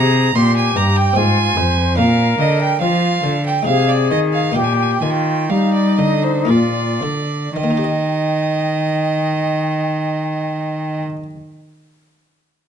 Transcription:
Already playing: C3 D#4 G#4 A#4 A#5
0.35 A#2 G4 C6
0.56 G#5
0.75 G2 A#5
0.97 G5
1.13 G#2 C4 F4 C5 G#5
1.56 F2 C5
1.95 A#2 D4 A#4 F5
2.39 D3 D#5
2.61 G5
2.81 F3 F4 F5
3.23 D3
3.46 G5
3.62 G#3 D#4 G#4 F5
3.67 C3
3.89 D5
4.11 D#3 D#5
4.33 F5
4.52 A#2 A#3 D#4 G4 G5
4.56 A#2
4.64 G#5
4.73 G5
4.82 G#5
4.92 G5
5.01 D#3 F4 G#5
5.11 G5
5.49 G3 D#4 F5
5.74 D5
5.98 D3 D#5
6.23 C5
6.45 A#2 A#3 F4 G#4 D5
6.49 A#2 F4
7.02 D3
7.56 D#3 D#5 G5
7.64 A#3
7.70 D#4
7.77 G4
7.84 D#5

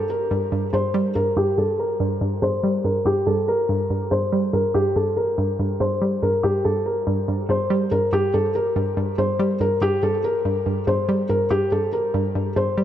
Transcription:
Already playing: G2 G3
0.10 A#4
0.31 G2
0.52 G2
0.73 G2 C5
0.94 G3
1.15 G2 A#4
1.37 G2 G4
1.58 G2 A4
1.79 A#4
2.00 G2
2.21 G2
2.42 G2 C5
2.63 G3
2.84 G2 A#4
3.05 G2 G4
3.27 G2 A4
3.48 A#4
3.69 G2
3.90 G2
4.11 G2 C5
4.32 G3
4.53 G2 A#4
4.74 G2 G4
4.96 G2 A4
5.16 A#4
5.38 G2
5.59 G2
5.80 G2 C5
6.02 G3
6.23 G2 A#4
6.43 G2 G4
6.64 G2 A4
6.86 A#4
7.07 G2
7.28 G2
7.49 G2 C5
7.70 G3
7.91 G2 A#4
8.13 G2 G4
8.34 G2 A4
8.55 A#4
8.76 G2
8.97 G2
9.18 G2 C5
9.39 G3
9.60 G2 A#4
9.81 G2 G4
10.03 G2 A4
10.24 A#4
10.45 G2
10.66 G2
10.87 G2 C5
11.09 G3
11.29 G2 A#4
11.50 G2 G4
11.72 G2 A4
11.93 A#4
12.14 G2
12.35 G2
12.56 G2 C5
12.78 G3

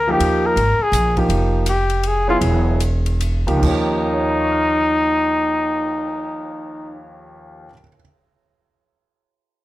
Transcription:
Already playing: D2 A#4
0.07 F3 A#3 D#4 G4
0.20 D#2, ride
0.46 A#4
0.56 G#1, ride
0.79 G#4, muted upright bass stroke
0.92 A#1, hi-hat pedal, ride
1.17 F3 A#3 D#4 G4, kick, ride
1.29 F1, ride
1.66 G4, hi-hat pedal, ride
1.90 ride
2.03 G#4, ride
2.28 F#3 B3 E4 F4 G#4
2.41 E1, ride
2.80 hi-hat pedal, ride
3.06 ride
3.21 hi-hat pedal, ride
3.47 C#2 F3 A#3 D#4 G4, ride
3.57 D#2 D#3
3.62 D#2 F3 C#4 D#4, kick, crash
3.69 G4
3.90 cymbal swell
4.06 A#4
4.13 C#5
4.22 F5
4.31 A#5
4.41 C#6
4.52 F6
4.63 A#6
4.76 C#7

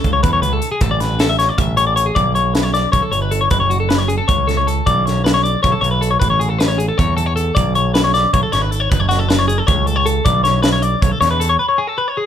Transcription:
Already playing: A4
0.04 C#2, kick, closed hi-hat
0.13 C#5
0.23 E2 B4, kick, closed hi-hat
0.33 C#5
0.42 C#2 B4, closed hi-hat
0.53 A4
0.62 closed hi-hat
0.72 G#4
0.81 A1 A4, kick, closed hi-hat
0.91 D5
1.00 B4, snare, closed hi-hat
1.19 A4, snare, closed hi-hat
1.30 E5
1.39 C#5, snare, closed hi-hat
1.49 D5
1.58 A1 E5, kick, closed hi-hat
1.77 C#5, closed hi-hat
1.87 D5
1.96 C#5, closed hi-hat
2.06 G#4
2.15 B1 D5, kick, closed hi-hat
2.35 C#5, closed hi-hat
2.54 B4, snare, closed hi-hat
2.63 C#5
2.74 D5, snare, closed hi-hat
2.92 B1 C#5, kick, closed hi-hat
3.02 A4
3.12 G1 C#5, closed hi-hat
3.22 B4
3.31 A4, closed hi-hat
3.41 C#5
3.50 F#1 B4, kick, closed hi-hat
3.60 C#5
3.70 F#4, closed hi-hat
3.80 A4
3.89 B4, snare, closed hi-hat
3.98 C#5
4.08 G#4, closed hi-hat
4.18 A4
4.28 C#2 C#5, kick, closed hi-hat
4.47 A4, snare, closed hi-hat
4.57 C#5
4.67 A4, closed hi-hat
4.86 B1 D5, kick, closed hi-hat
5.06 C#5, snare, closed hi-hat
5.24 B4, snare, closed hi-hat
5.34 C#5
5.44 D5, closed hi-hat
5.63 B1 C#5, kick, closed hi-hat
5.72 A4
5.81 B1 C#5, closed hi-hat
5.91 B4
6.01 A4, closed hi-hat
6.11 C#5
6.20 A1 B4, kick, closed hi-hat
6.30 C#5
6.40 G#4, closed hi-hat
6.49 A4
6.59 B4, snare, closed hi-hat
6.68 C#5
6.78 G#4, closed hi-hat
6.89 A4
6.98 E2 C#5, kick, closed hi-hat
7.17 A4, closed hi-hat
7.26 C#5
7.36 A4, closed hi-hat
7.55 B1 D5, kick, closed hi-hat
7.75 C#5, closed hi-hat
7.94 B4, snare, closed hi-hat
8.04 C#5
8.14 D5, snare, closed hi-hat
8.33 B1 C#5, kick, closed hi-hat
8.43 A4
8.52 G#1 C#5, snare, closed hi-hat
8.62 B4
8.71 A4, closed hi-hat
8.80 C#5
8.90 F#1 B4, kick, closed hi-hat
9.00 C#5
9.09 F#4, snare, closed hi-hat
9.19 A4
9.28 B4, snare, closed hi-hat
9.39 C#5
9.48 G#4, closed hi-hat
9.58 A4
9.67 C#2 C#5, kick, closed hi-hat
9.87 A4, closed hi-hat
9.96 C#5
10.06 A4, closed hi-hat
10.25 B1 D5, kick, closed hi-hat
10.44 C#5, snare, closed hi-hat
10.63 B4, snare, closed hi-hat
10.73 C#5
10.82 D5, closed hi-hat
11.02 B1 C#5, kick, closed hi-hat
11.12 A4
11.21 E2 C#5, snare, closed hi-hat
11.31 B4
11.40 A4, closed hi-hat
11.49 C#5
11.59 B4
11.69 C#5
11.78 G#4
11.87 A4
11.98 B4
12.08 C#5
12.17 G#4

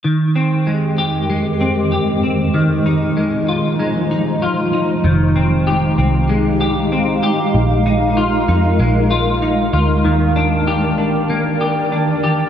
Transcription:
0.04 F2 D#3 G#3 G4
0.36 C4
0.67 G#3
0.98 G4
1.30 G#3
1.61 C4
1.92 G4
2.23 C4
2.54 A#2 D#3 F3 D#4
2.86 D#4
3.17 G#3
3.48 F4
3.80 G#3
4.11 D#4
4.42 F4
4.73 D#4
5.04 F1 D#3 G#3 D#4 G4 F5
5.36 C4
5.67 G4
5.98 C2 C4
6.29 G#3
6.61 G4
6.92 C4
7.23 G4
7.55 A#1 A#4
7.86 D#4
8.17 F4
8.48 F2 D#4
8.80 A#1 G#3
9.11 F4
9.42 D#4
9.73 D2 F4
10.05 D#2 D#3 D5 G5
10.36 D4
10.67 G4
10.98 A#1 D4
11.30 A#3
11.61 G4
11.92 D4
12.24 G4

